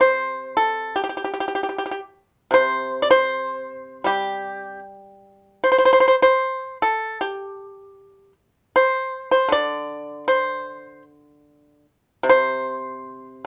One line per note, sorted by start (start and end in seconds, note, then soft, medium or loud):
0.00 1.75 C3 soft
0.00 0.55 C5 medium
0.57 0.94 A4 medium
0.96 1.02 G4 soft
1.04 1.08 G4 soft
1.09 1.16 G4 soft
1.17 1.23 G4 soft
1.24 1.32 G4 soft
1.34 1.39 G4 soft
1.40 1.47 G4 soft
1.48 1.54 G4 soft
1.55 1.62 G4 soft
1.63 1.68 G4 soft
1.78 1.84 G4 soft
1.86 1.90 G4 soft
1.91 1.99 G4 soft
2.51 4.81 C3 soft
2.51 3.00 C5 medium
3.02 3.09 D5 medium
3.11 4.01 C5 medium
4.04 6.40 G3 soft
4.04 4.79 G4 medium
5.64 5.69 C5 medium
5.72 5.77 C5 soft
5.78 5.84 C5 soft
5.85 5.92 C5 medium
5.93 5.99 C5 medium
6.00 6.07 C5 medium
6.08 6.14 C5 medium
6.22 6.76 C5 medium
6.82 7.17 A4 medium
7.21 8.32 G4 soft
8.76 9.29 C5 medium
9.31 9.49 C5 medium
9.48 11.85 D3 soft
9.48 10.24 D5 medium
10.28 11.02 C5 medium
12.23 13.45 C3 soft
12.29 13.44 C5 medium